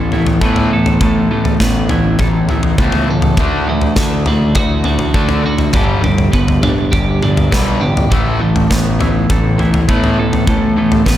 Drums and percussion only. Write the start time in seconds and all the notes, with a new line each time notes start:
0.12 floor tom
0.27 floor tom
0.41 kick
0.56 floor tom
0.86 floor tom
1.01 kick, floor tom
1.45 floor tom
1.60 kick, snare
1.89 floor tom
2.19 kick, floor tom
2.49 floor tom
2.63 floor tom
2.78 kick
2.92 floor tom
3.22 floor tom
3.37 kick, floor tom
3.81 floor tom
3.96 kick, snare
4.26 floor tom
4.55 kick, floor tom
4.84 floor tom
4.99 floor tom
5.14 kick
5.29 floor tom
5.58 floor tom
5.73 kick, floor tom
6.04 floor tom
6.18 floor tom
6.33 kick
6.48 floor tom
6.63 floor tom, mid tom
6.93 kick, floor tom
7.23 mid tom
7.37 floor tom
7.52 kick, snare
7.97 floor tom
8.12 kick, floor tom
8.56 floor tom
8.71 kick, snare
9.01 floor tom
9.30 kick, floor tom
9.59 floor tom
9.74 floor tom
9.89 kick
10.04 floor tom
10.33 floor tom
10.47 kick, floor tom
10.92 floor tom
11.06 kick, snare